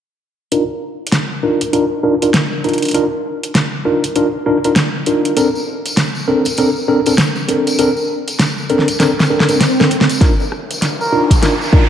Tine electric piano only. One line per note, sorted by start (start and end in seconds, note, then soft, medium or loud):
0.52 0.62 D4 medium
0.52 0.62 D#4 medium
0.52 0.62 F4 medium
0.52 0.62 A#4 medium
1.43 1.60 D4 medium
1.43 1.60 D#4 medium
1.43 1.60 F4 medium
1.43 1.60 A#4 medium
1.73 1.83 D4 medium
1.73 1.84 D#4 medium
1.73 1.84 F4 medium
1.73 1.84 A#4 loud
2.03 2.14 D4 medium
2.03 2.14 D#4 medium
2.03 2.14 F4 medium
2.03 2.14 A#4 medium
2.22 2.29 D4 medium
2.22 2.29 D#4 medium
2.22 2.29 F4 medium
2.22 2.29 A#4 medium
2.64 2.92 D4 medium
2.64 2.92 D#4 medium
2.64 2.92 F4 medium
2.64 2.92 A#4 medium
2.94 3.05 D4 medium
2.94 3.05 D#4 medium
2.94 3.05 F4 medium
2.94 3.05 A#4 loud
3.85 4.02 D4 medium
3.85 4.02 D#4 medium
3.85 4.02 F4 medium
3.85 4.02 A#4 medium
4.16 4.26 D4 medium
4.16 4.26 D#4 medium
4.16 4.26 F4 medium
4.16 4.26 A#4 loud
4.46 4.56 D4 medium
4.46 4.56 D#4 medium
4.46 4.56 F4 medium
4.46 4.56 A#4 loud
4.65 4.71 D4 medium
4.65 4.71 D#4 medium
4.65 4.71 F4 medium
4.65 4.71 A#4 medium
5.07 5.34 D4 medium
5.07 5.34 D#4 medium
5.07 5.34 F4 medium
5.07 5.34 A#4 medium
5.37 5.47 C4 medium
5.37 5.47 D4 medium
5.37 5.47 A4 medium
5.37 5.47 A#4 medium
6.28 6.44 C4 medium
6.28 6.44 D4 medium
6.28 6.44 A4 medium
6.28 6.44 A#4 medium
6.58 6.69 C4 medium
6.58 6.68 D4 medium
6.58 6.69 A4 medium
6.58 6.69 A#4 loud
6.88 6.99 C4 medium
6.88 6.99 D4 medium
6.88 6.99 A4 medium
6.88 6.99 A#4 loud
7.07 7.13 C4 medium
7.07 7.13 D4 medium
7.07 7.13 A4 medium
7.07 7.13 A#4 medium
7.48 7.76 C4 medium
7.48 7.76 D4 medium
7.48 7.76 A4 medium
7.48 7.76 A#4 medium
7.79 7.90 C4 medium
7.79 7.90 D4 medium
7.79 7.89 A4 medium
7.79 7.90 A#4 loud
8.70 8.87 C4 medium
8.70 8.87 D4 medium
8.70 8.87 A4 medium
8.70 8.87 A#4 medium
9.00 9.11 C4 medium
9.00 9.11 D4 medium
9.00 9.11 A4 medium
9.00 9.11 A#4 loud
9.30 9.46 C4 medium
9.30 9.46 D4 medium
9.30 9.46 A4 medium
9.30 9.46 A#4 medium
9.49 9.56 C4 medium
9.49 9.56 D4 medium
9.49 9.56 A4 medium
9.49 9.56 A#4 medium
9.80 9.86 C4 medium
9.80 9.86 D4 medium
9.80 9.86 A4 medium
9.80 9.86 A#4 medium
10.22 10.32 D4 medium
10.22 10.32 D#4 medium
10.22 10.32 F4 medium
10.22 10.32 A#4 loud
11.12 11.29 D4 medium
11.12 11.29 D#4 medium
11.12 11.29 F4 medium
11.12 11.29 A#4 medium
11.42 11.53 D4 medium
11.42 11.53 D#4 medium
11.42 11.53 F4 medium
11.42 11.53 A#4 loud
11.73 11.84 D4 medium
11.73 11.84 D#4 medium
11.73 11.84 F4 medium
11.73 11.84 A#4 loud